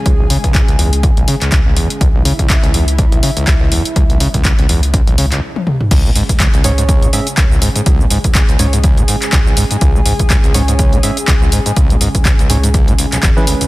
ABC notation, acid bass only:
X:1
M:4/4
L:1/16
Q:"Swing 16ths" 1/4=123
K:C#m
V:1 name="Acid bass" clef=bass
C,, B,,, C, C,, C,, C,, E,, z C,, B,,, C, C,, z C,, E,, z | C,, B,,, C, C,, C,, C,, E,, z C,, B,,, C, C,, z C,, E,, z | C,, B,,, C, C,, C,, C,, E,, z C,, B,,, C, C,, z4 | C,, C, G,, z C,, C,, G,, G,, C,, C, G,, z C,, C,, G,, G,, |
C,, C, G,, z C,, C,, G,, G,, C,, C, G,, z C,, C,, G,, G,, | C,, C, G,, z C,, C,, G,, G,, C,, C, G,, z C,, C,, G,, G,, | C,, C, G,, z C,, C,, G,, G,, C,, C, C,, B,,, E,, E, =D,, C,, |]